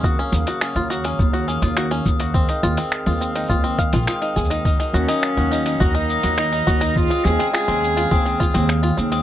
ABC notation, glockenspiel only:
X:1
M:4/4
L:1/16
Q:1/4=104
K:Ebdor
V:1 name="Glockenspiel"
e' z2 e' z3 e' z2 e' z3 e' z | z e' z3 e' z2 e' z3 e' z2 e' | z3 e' z2 e' z3 e' z2 e' z2 | z e' z2 e' z3 e' z2 e' z3 e' |]